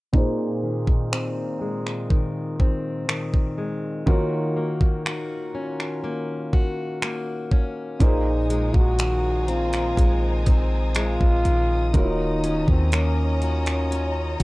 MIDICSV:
0, 0, Header, 1, 7, 480
1, 0, Start_track
1, 0, Tempo, 983607
1, 67, Time_signature, 4, 2, 24, 8
1, 7042, End_track
2, 0, Start_track
2, 0, Title_t, "String section"
2, 0, Program_c, 0, 48
2, 3904, Note_on_c, 0, 72, 67
2, 3904, Note_on_c, 0, 80, 64
2, 3904, Note_on_c, 0, 82, 64
2, 3904, Note_on_c, 0, 87, 79
2, 5806, Note_off_c, 0, 72, 0
2, 5806, Note_off_c, 0, 80, 0
2, 5806, Note_off_c, 0, 82, 0
2, 5826, Note_on_c, 0, 75, 66
2, 5827, Note_on_c, 0, 82, 68
2, 5828, Note_on_c, 0, 73, 70
2, 7042, Note_off_c, 0, 73, 0
2, 7042, Note_off_c, 0, 75, 0
2, 7042, Note_off_c, 0, 82, 0
2, 7042, Note_off_c, 0, 87, 0
2, 7042, End_track
3, 0, Start_track
3, 0, Title_t, "Felt piano"
3, 0, Program_c, 1, 0
3, 62, Note_on_c, 1, 46, 69
3, 67, Note_on_c, 1, 58, 61
3, 71, Note_on_c, 1, 63, 63
3, 76, Note_on_c, 1, 68, 61
3, 81, Note_on_c, 1, 72, 75
3, 154, Control_c, 1, 64, 127
3, 1965, Note_off_c, 1, 46, 0
3, 1967, Note_off_c, 1, 58, 0
3, 1970, Note_off_c, 1, 63, 0
3, 1972, Note_off_c, 1, 68, 0
3, 1975, Note_off_c, 1, 72, 0
3, 1982, Note_on_c, 1, 51, 73
3, 1987, Note_on_c, 1, 58, 63
3, 1991, Note_on_c, 1, 65, 60
3, 1993, Control_c, 1, 64, 0
3, 1996, Note_on_c, 1, 66, 64
3, 2001, Note_on_c, 1, 73, 77
3, 2069, Control_c, 1, 64, 127
3, 3885, Note_off_c, 1, 51, 0
3, 3888, Note_off_c, 1, 58, 0
3, 3890, Note_off_c, 1, 65, 0
3, 3892, Note_off_c, 1, 66, 0
3, 3894, Note_off_c, 1, 73, 0
3, 3901, Note_on_c, 1, 46, 60
3, 3906, Note_on_c, 1, 58, 60
3, 3910, Note_on_c, 1, 63, 56
3, 3912, Control_c, 1, 64, 0
3, 3915, Note_on_c, 1, 68, 53
3, 3920, Note_on_c, 1, 72, 70
3, 3993, Control_c, 1, 64, 127
3, 5805, Note_off_c, 1, 46, 0
3, 5807, Note_off_c, 1, 58, 0
3, 5809, Note_off_c, 1, 63, 0
3, 5811, Note_off_c, 1, 68, 0
3, 5814, Note_off_c, 1, 72, 0
3, 5823, Note_on_c, 1, 51, 61
3, 5827, Note_on_c, 1, 58, 58
3, 5832, Note_on_c, 1, 65, 60
3, 5834, Control_c, 1, 64, 0
3, 5837, Note_on_c, 1, 66, 57
3, 5842, Note_on_c, 1, 73, 70
3, 5933, Control_c, 1, 64, 127
3, 7042, Note_off_c, 1, 51, 0
3, 7042, Note_off_c, 1, 58, 0
3, 7042, Note_off_c, 1, 65, 0
3, 7042, Note_off_c, 1, 66, 0
3, 7042, Note_off_c, 1, 73, 0
3, 7042, End_track
4, 0, Start_track
4, 0, Title_t, "Trombone"
4, 0, Program_c, 2, 57
4, 3912, Note_on_c, 2, 63, 91
4, 4273, Note_on_c, 2, 66, 113
4, 4280, Note_off_c, 2, 63, 0
4, 4634, Note_on_c, 2, 65, 89
4, 4642, Note_off_c, 2, 66, 0
4, 5111, Note_off_c, 2, 65, 0
4, 5354, Note_on_c, 2, 65, 105
4, 5832, Note_on_c, 2, 63, 100
4, 5839, Note_off_c, 2, 65, 0
4, 6193, Note_on_c, 2, 60, 84
4, 6201, Note_off_c, 2, 63, 0
4, 6314, Note_on_c, 2, 61, 87
4, 6321, Note_off_c, 2, 60, 0
4, 7042, Note_off_c, 2, 61, 0
4, 7042, End_track
5, 0, Start_track
5, 0, Title_t, "Steel-string acoustic guitar"
5, 0, Program_c, 3, 25
5, 68, Note_on_c, 3, 46, 73
5, 70, Note_on_c, 3, 60, 59
5, 308, Note_on_c, 3, 51, 57
5, 541, Note_off_c, 3, 60, 0
5, 547, Note_on_c, 3, 60, 64
5, 787, Note_on_c, 3, 56, 56
5, 1024, Note_off_c, 3, 51, 0
5, 1026, Note_on_c, 3, 51, 66
5, 1261, Note_off_c, 3, 60, 0
5, 1267, Note_on_c, 3, 60, 68
5, 1504, Note_off_c, 3, 51, 0
5, 1506, Note_on_c, 3, 51, 60
5, 1740, Note_off_c, 3, 56, 0
5, 1746, Note_on_c, 3, 56, 57
5, 1984, Note_off_c, 3, 51, 0
5, 1986, Note_on_c, 3, 51, 75
5, 1987, Note_off_c, 3, 46, 0
5, 1989, Note_on_c, 3, 66, 61
5, 2035, Note_off_c, 3, 56, 0
5, 2035, Note_off_c, 3, 60, 0
5, 2227, Note_on_c, 3, 58, 59
5, 2461, Note_off_c, 3, 66, 0
5, 2467, Note_on_c, 3, 66, 65
5, 2706, Note_on_c, 3, 61, 57
5, 2944, Note_off_c, 3, 58, 0
5, 2946, Note_on_c, 3, 58, 67
5, 3181, Note_off_c, 3, 66, 0
5, 3186, Note_on_c, 3, 66, 63
5, 3425, Note_off_c, 3, 58, 0
5, 3426, Note_on_c, 3, 58, 64
5, 3660, Note_off_c, 3, 61, 0
5, 3666, Note_on_c, 3, 61, 61
5, 3906, Note_off_c, 3, 51, 0
5, 3907, Note_on_c, 3, 46, 76
5, 3954, Note_off_c, 3, 61, 0
5, 3955, Note_off_c, 3, 66, 0
5, 4145, Note_off_c, 3, 58, 0
5, 4147, Note_on_c, 3, 56, 58
5, 4386, Note_on_c, 3, 51, 57
5, 4626, Note_on_c, 3, 60, 65
5, 4861, Note_off_c, 3, 56, 0
5, 4867, Note_on_c, 3, 56, 59
5, 5101, Note_off_c, 3, 60, 0
5, 5107, Note_on_c, 3, 60, 66
5, 5342, Note_off_c, 3, 56, 0
5, 5348, Note_on_c, 3, 56, 63
5, 5585, Note_off_c, 3, 51, 0
5, 5587, Note_on_c, 3, 51, 58
5, 5826, Note_off_c, 3, 51, 0
5, 5827, Note_off_c, 3, 46, 0
5, 5828, Note_on_c, 3, 51, 75
5, 5875, Note_off_c, 3, 56, 0
5, 5875, Note_off_c, 3, 60, 0
5, 6068, Note_on_c, 3, 61, 60
5, 6308, Note_on_c, 3, 58, 58
5, 6548, Note_on_c, 3, 66, 61
5, 6781, Note_off_c, 3, 61, 0
5, 6787, Note_on_c, 3, 61, 60
5, 7025, Note_off_c, 3, 66, 0
5, 7027, Note_on_c, 3, 66, 67
5, 7042, Note_off_c, 3, 51, 0
5, 7042, Note_off_c, 3, 58, 0
5, 7042, Note_off_c, 3, 61, 0
5, 7042, Note_off_c, 3, 66, 0
5, 7042, End_track
6, 0, Start_track
6, 0, Title_t, "808-style bass"
6, 0, Program_c, 4, 38
6, 3908, Note_on_c, 4, 34, 101
6, 4253, Note_off_c, 4, 34, 0
6, 4268, Note_on_c, 4, 34, 95
6, 4848, Note_off_c, 4, 34, 0
6, 4869, Note_on_c, 4, 34, 101
6, 5098, Note_off_c, 4, 34, 0
6, 5109, Note_on_c, 4, 34, 100
6, 5454, Note_off_c, 4, 34, 0
6, 5471, Note_on_c, 4, 34, 96
6, 5584, Note_off_c, 4, 34, 0
6, 5589, Note_on_c, 4, 34, 101
6, 5818, Note_off_c, 4, 34, 0
6, 5828, Note_on_c, 4, 27, 105
6, 6173, Note_off_c, 4, 27, 0
6, 6188, Note_on_c, 4, 39, 100
6, 7008, Note_off_c, 4, 39, 0
6, 7042, End_track
7, 0, Start_track
7, 0, Title_t, "Drums"
7, 66, Note_on_c, 9, 36, 99
7, 115, Note_off_c, 9, 36, 0
7, 426, Note_on_c, 9, 36, 76
7, 475, Note_off_c, 9, 36, 0
7, 551, Note_on_c, 9, 26, 102
7, 600, Note_off_c, 9, 26, 0
7, 911, Note_on_c, 9, 26, 62
7, 960, Note_off_c, 9, 26, 0
7, 1027, Note_on_c, 9, 36, 85
7, 1076, Note_off_c, 9, 36, 0
7, 1267, Note_on_c, 9, 36, 82
7, 1316, Note_off_c, 9, 36, 0
7, 1508, Note_on_c, 9, 26, 107
7, 1557, Note_off_c, 9, 26, 0
7, 1628, Note_on_c, 9, 36, 77
7, 1677, Note_off_c, 9, 36, 0
7, 1986, Note_on_c, 9, 36, 109
7, 2035, Note_off_c, 9, 36, 0
7, 2346, Note_on_c, 9, 36, 82
7, 2395, Note_off_c, 9, 36, 0
7, 2470, Note_on_c, 9, 26, 101
7, 2518, Note_off_c, 9, 26, 0
7, 2830, Note_on_c, 9, 26, 64
7, 2879, Note_off_c, 9, 26, 0
7, 3187, Note_on_c, 9, 36, 83
7, 3236, Note_off_c, 9, 36, 0
7, 3428, Note_on_c, 9, 26, 108
7, 3477, Note_off_c, 9, 26, 0
7, 3667, Note_on_c, 9, 36, 93
7, 3716, Note_off_c, 9, 36, 0
7, 3906, Note_on_c, 9, 36, 109
7, 3906, Note_on_c, 9, 42, 65
7, 3955, Note_off_c, 9, 36, 0
7, 3955, Note_off_c, 9, 42, 0
7, 4149, Note_on_c, 9, 42, 66
7, 4198, Note_off_c, 9, 42, 0
7, 4267, Note_on_c, 9, 36, 80
7, 4315, Note_off_c, 9, 36, 0
7, 4386, Note_on_c, 9, 42, 73
7, 4391, Note_on_c, 9, 26, 108
7, 4435, Note_off_c, 9, 42, 0
7, 4440, Note_off_c, 9, 26, 0
7, 4627, Note_on_c, 9, 42, 54
7, 4676, Note_off_c, 9, 42, 0
7, 4747, Note_on_c, 9, 42, 58
7, 4751, Note_on_c, 9, 26, 68
7, 4796, Note_off_c, 9, 42, 0
7, 4800, Note_off_c, 9, 26, 0
7, 4867, Note_on_c, 9, 36, 88
7, 4872, Note_on_c, 9, 42, 68
7, 4916, Note_off_c, 9, 36, 0
7, 4921, Note_off_c, 9, 42, 0
7, 5106, Note_on_c, 9, 42, 64
7, 5108, Note_on_c, 9, 36, 86
7, 5155, Note_off_c, 9, 42, 0
7, 5157, Note_off_c, 9, 36, 0
7, 5342, Note_on_c, 9, 42, 68
7, 5348, Note_on_c, 9, 26, 104
7, 5391, Note_off_c, 9, 42, 0
7, 5397, Note_off_c, 9, 26, 0
7, 5469, Note_on_c, 9, 36, 84
7, 5518, Note_off_c, 9, 36, 0
7, 5587, Note_on_c, 9, 42, 63
7, 5636, Note_off_c, 9, 42, 0
7, 5826, Note_on_c, 9, 42, 62
7, 5827, Note_on_c, 9, 36, 101
7, 5875, Note_off_c, 9, 36, 0
7, 5875, Note_off_c, 9, 42, 0
7, 6069, Note_on_c, 9, 42, 64
7, 6118, Note_off_c, 9, 42, 0
7, 6187, Note_on_c, 9, 36, 80
7, 6236, Note_off_c, 9, 36, 0
7, 6305, Note_on_c, 9, 42, 69
7, 6311, Note_on_c, 9, 26, 106
7, 6354, Note_off_c, 9, 42, 0
7, 6359, Note_off_c, 9, 26, 0
7, 6548, Note_on_c, 9, 42, 53
7, 6597, Note_off_c, 9, 42, 0
7, 6668, Note_on_c, 9, 42, 61
7, 6672, Note_on_c, 9, 26, 67
7, 6716, Note_off_c, 9, 42, 0
7, 6721, Note_off_c, 9, 26, 0
7, 6793, Note_on_c, 9, 42, 65
7, 6842, Note_off_c, 9, 42, 0
7, 7042, End_track
0, 0, End_of_file